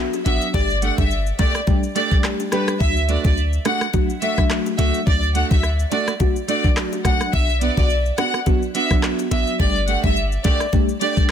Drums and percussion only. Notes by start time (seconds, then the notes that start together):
0.13 high bongo, shaker
0.26 closed hi-hat, low bongo, shaker
0.42 shaker
0.54 kick, high bongo, shaker
0.70 shaker
0.82 closed hi-hat, shaker
0.98 kick, high bongo, shaker
1.11 shaker
1.27 shaker
1.39 kick, closed hi-hat, high bongo, low bongo, shaker
1.55 cross-stick, shaker
1.67 kick, high bongo, shaker
1.83 shaker
1.96 closed hi-hat, shaker
2.11 kick, shaker
2.24 cross-stick, clap, shaker
2.40 high bongo, shaker
2.52 cross-stick, closed hi-hat, low bongo, shaker
2.68 cross-stick, shaker
2.80 kick, high bongo, shaker
2.97 shaker
3.09 closed hi-hat, shaker
3.25 kick, high bongo, shaker
3.37 shaker
3.53 shaker
3.65 cross-stick, closed hi-hat, high bongo, low bongo, shaker
3.81 cross-stick, shaker
3.94 kick, high bongo, shaker
4.10 shaker
4.22 closed hi-hat, shaker
4.38 kick, cross-stick, shaker
4.50 cross-stick, clap, shaker
4.66 high bongo, shaker
4.79 closed hi-hat, low bongo, shaker
4.94 shaker
5.07 kick, high bongo, shaker
5.23 shaker
5.35 closed hi-hat, shaker
5.51 kick, high bongo, shaker
5.63 cross-stick, shaker
5.79 shaker
5.92 closed hi-hat, high bongo, low bongo, shaker
6.08 cross-stick, shaker
6.20 kick, high bongo, shaker
6.36 shaker
6.49 closed hi-hat, shaker
6.64 kick, shaker
6.77 cross-stick, clap, shaker
6.93 high bongo, shaker
7.05 kick, cross-stick, closed hi-hat, low bongo, shaker
7.21 cross-stick, shaker
7.33 kick, high bongo, shaker
7.49 shaker
7.61 closed hi-hat, shaker
7.77 kick, high bongo, shaker
7.90 shaker
8.06 shaker
8.18 cross-stick, closed hi-hat, high bongo, low bongo, shaker
8.34 cross-stick, shaker
8.46 kick, high bongo, shaker
8.62 shaker
8.75 closed hi-hat, shaker
8.91 kick, cross-stick, shaker
9.03 cross-stick, clap, shaker
9.19 high bongo, shaker
9.31 closed hi-hat, low bongo, shaker
9.47 shaker
9.60 kick, high bongo, shaker
9.76 shaker
9.88 closed hi-hat, shaker
10.04 kick, high bongo, shaker
10.16 shaker
10.32 shaker
10.44 kick, closed hi-hat, high bongo, low bongo, shaker
10.60 cross-stick, shaker
10.73 kick, high bongo, shaker
10.89 shaker
11.01 closed hi-hat, shaker
11.17 kick, shaker